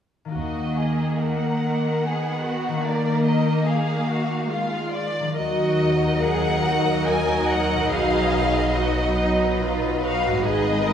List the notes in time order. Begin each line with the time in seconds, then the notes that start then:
0.25 D#3 A#3 D#4
0.31 F#4
0.35 D#2 D#3 A#3 F#4 D#5
0.78 G#4
1.22 A#4 F#5
1.65 A#4
2.06 B3 G#4
2.47 F#4
2.68 D#3
2.73 A#3
2.77 D4
2.82 G#4
2.86 A#3 A#4 D5
3.25 D#5
3.65 G#4 F5
4.08 F#4
4.49 G#3 F4 F5
4.94 D5
5.20 D#3
5.25 F#3
5.30 D#4
5.34 A#3 F#4 A#4
5.38 D#2 F#3 D#4 F#4 A#4 D#5
6.23 G#4 F#5
6.66 F#4
7.07 A#4 G#5
7.50 F#5
7.74 B2
7.78 F#3
7.83 D#4
7.87 B4 F5
7.91 B1 B3 G#4 B4
8.74 F#4 D#5
9.17 D#4
9.60 F4
10.01 F#4 F5
10.26 G#2
10.30 G#3
10.35 D#4
10.39 D#4 B4 D#5
10.43 G#1 G#3 D#4 G#4 D#5
10.84 A#4